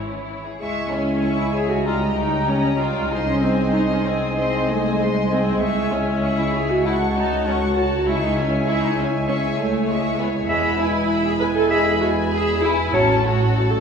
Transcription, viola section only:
Already playing: E3 E4
0.60 G#3
0.91 C#4
1.38 E4
1.55 G#4
1.70 F#4
1.87 F4
2.17 D#4
2.48 C#4
2.78 F4
3.10 D#4
3.27 C#4
3.43 C4
3.74 D#4
3.91 C#4
4.05 C4
4.37 C4
4.68 A3
4.99 G#3
5.30 C4
5.61 G#3
5.91 C#4
6.39 E4
6.54 G#4
6.71 F#4
6.86 E4
7.16 D#4
7.46 C#4
7.77 F#4
8.07 E4
8.22 D#4
8.37 C#4
8.68 E4
8.83 D#4
8.98 C#4
9.28 C#4
9.58 A3
9.89 G#3
10.19 B3
10.49 B3
10.79 E4
11.25 G#4
11.39 B4
11.55 A4
11.70 G#4
12.00 F#4
12.32 G#4
12.62 E4
12.94 C#4
13.24 F#4
13.70 A4

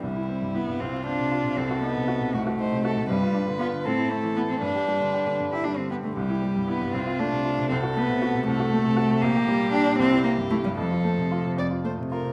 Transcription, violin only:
0.02 E4
0.79 F4
1.58 A4
2.34 F#4
2.59 C5
2.85 A4
3.09 B4
3.85 A4
4.62 B4
6.15 G4
6.93 F4
7.70 A4
8.47 A4
9.22 G4
9.98 G4
10.78 A4
11.58 D5
11.85 C5
12.11 A#4

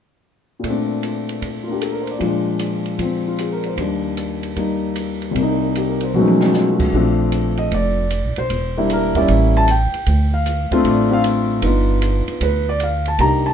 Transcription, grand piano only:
0.59 A#2
0.64 A3 C4
0.70 D4
1.63 F4
1.68 A#3 D4
1.72 G4
1.81 A4
1.92 A#4
2.02 C5
2.11 D5
2.19 A#2 F3 G#3
2.23 D4
2.98 F3 C4
3.28 F4
3.40 G#4
3.52 A#4
3.66 C5
3.75 D#2 D#3 G3
3.81 D4
4.56 G3 A#3 D#4
5.31 C2 C3
5.39 A#3 D#4
5.77 G4
5.90 A#4
6.03 C5
6.14 B2 F#3 G#3 A3 C#4
6.19 D#4
6.54 F4
6.74 F#4
6.94 F3 A3 C4 D4
7.58 D#5
7.74 D5
8.38 C5
8.77 G3 A#3 D4 E4
8.93 A#4
9.16 G3 A#3 C#4 E4 D5
9.57 A5
9.71 G5
10.34 F5
10.72 A3 C4 D4 F4
10.88 D5
11.11 A3 C4 D4 F4 F5
11.63 B3 D4 D#4 F4
12.43 B4
12.69 D5
12.83 F5
13.08 A5
13.20 A#3 D4 D#4 G4 A#5
13.46 A5

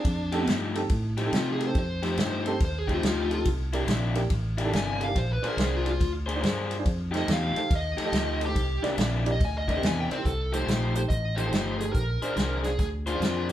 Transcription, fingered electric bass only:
0.05 F2
0.48 G2
0.90 A2
1.33 C3
1.75 F2
2.17 G2
2.60 D#2
3.04 D2
3.46 C2
3.87 A#1
4.30 A1
4.73 G1
5.16 A#1
5.57 C2
6.01 D2
6.43 G2
6.86 F2
7.28 E2
7.56 muted fingered electric bass stroke
7.71 D#2
7.98 muted fingered electric bass stroke
8.12 D2
8.56 C2
8.83 muted fingered electric bass stroke
8.98 A#1
9.40 D2
9.82 E2
10.11 muted fingered electric bass stroke
10.25 C2
10.67 A#1
11.10 A1
11.52 G1
11.95 A#1
12.22 muted fingered electric bass stroke
12.36 C2
12.79 D2
13.20 F2

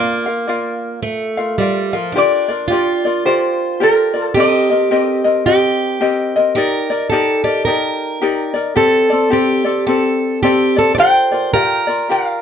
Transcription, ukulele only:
Already playing: F4 A#4 D5 F5
0.26 F4 A#4 F5
0.47 F4 A#4 D5 F5
1.37 F4 A#4 F5
1.60 F4 A#4 D5 F5
1.93 F4 A#4 F5
2.15 F4 G4 A#4 D5
2.49 F4 A#4 D5
2.70 F4 G4 A#4 D5
3.05 F4 A#4 D5
3.25 F4 G4 A#4 D5
3.80 F4 G4 A#4 D5
4.14 F4 A#4 D5
4.35 C4 G4 A#4 D#5
4.70 C4 A#4 D#5
4.91 C4 G4 A#4 D#5
5.24 C4 A#4 D#5
5.45 C4 G4 A#4 D#5
6.01 C4 G4 A#4 D#5
6.36 C4 A#4 D#5
6.56 D#4 G4 A#4 D5
6.90 D#4 A#4 D5
7.11 D#4 G4 A#4 D5
7.44 D#4 A#4 D5
7.66 D#4 G4 A#4 D5
8.21 D#4 G4 A#4 D5
8.54 D#4 A#4 D5
8.76 C4 G4 A4 D5
9.10 C4 A4 D5
9.30 C4 G4 A4 D5
9.64 C4 A4 D5
9.86 C4 G4 A4 D5
10.43 C4 G4 A4 D5
10.76 C4 A4 D5
10.98 F4 G4 A#4 D5
11.31 F4 A#4 D5
11.53 F4 G4 A#4 D5
11.87 F4 A#4 D5
12.09 F4 G4 A#4 D5

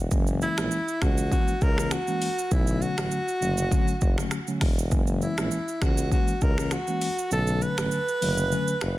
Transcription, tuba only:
Already playing: E1
0.11 F#1
0.58 A#1
1.02 C#2
1.62 C#2
2.52 B1
2.98 A1
3.42 F#1
4.02 F#1
4.61 E1
4.92 F#1
5.38 A#1
5.82 C#2
6.42 C#2
7.32 B1
7.78 A1
8.21 F#1
8.81 F#1

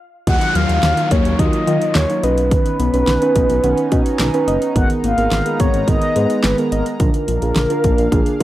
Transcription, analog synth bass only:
0.27 D#2
0.55 D#2
0.69 D#2
0.83 D#2
1.11 D#2
1.25 D#2
1.39 D#2
1.67 D#3
1.95 D#2
2.23 B1
2.79 B1
2.93 B1
3.07 B1
3.36 B1
3.50 B1
3.64 B1
3.92 B2
4.20 B1
4.48 F#1
4.76 G#1
5.04 G#1
5.18 G#1
5.32 G#1
5.60 G#1
5.74 G#1
5.88 G#1
6.16 G#2
6.44 G#1
6.72 G#1
7.00 A#1
7.28 A#1
7.42 A#1
7.56 A#1
7.84 A#1
7.98 A#1
8.12 A#1

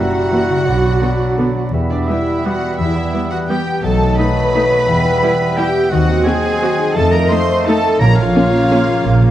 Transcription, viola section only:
0.33 E3 A#3
1.02 D3 B3
1.38 D3 B3
2.09 G3 B3
2.45 G3 B3
3.13 G3 B3
3.49 G3 B3
4.18 A3 D#4
4.55 A3 D#4
5.23 G3 E4
5.59 G3 E4
6.26 C4 F#4
6.62 C4 F#4
7.31 A3 D#4
7.67 A3 D#4
8.35 A#3 C#4
8.71 A#3 C#4

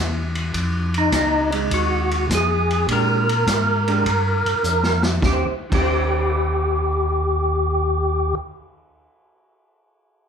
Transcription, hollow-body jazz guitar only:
1.53 G#3 D#4
2.90 G#3 D4 G4
3.88 G#3 D4 G4
5.21 D#3
5.26 C#4
5.30 G4 C5
5.70 D#3
5.75 C#4 G4
5.82 C5

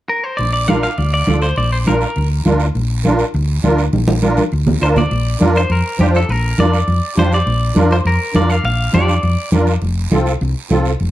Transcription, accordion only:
0.68 D4 F4 A#4
1.27 D4 F4 A4
1.86 D4 F4 A#4
2.45 D4 F4 A#4
3.05 D4 F4 A#4
3.63 D4 F4 A#4
4.22 D4 F4 A#4
4.81 D4 F4 A#4
5.40 D4 F4 A#4
5.99 D4 F4 C5
6.58 D4 F4 A#4
7.16 D4 F4 G4
7.75 D4 F4 A#4
8.34 D4 F4 A#4
8.93 D4 F4 G4
9.53 D4 F4 A#4
10.12 C4 F4 A4
10.70 C4 F4 A4

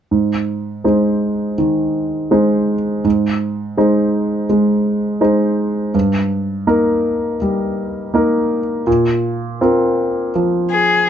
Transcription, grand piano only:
0.11 G#2
0.84 G#3 D#4 C5
1.58 D#3
2.31 G#3 D#4 C5
3.04 G#2
3.77 G#3 D#4 C5
4.50 G#3
5.21 G#3 D#4 C5
5.94 G2
6.67 A#3 D#4 A#4
7.42 G3
8.14 A#3 D#4 A#4
8.87 A#2
9.61 C4 F4 A#4
10.35 F3

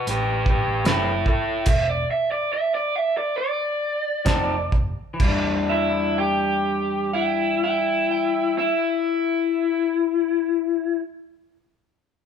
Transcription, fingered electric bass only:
0.07 A1
0.67 A1
0.85 F#1
1.67 E1
4.26 F1
4.73 F1
4.98 muted fingered electric bass stroke
5.20 E2

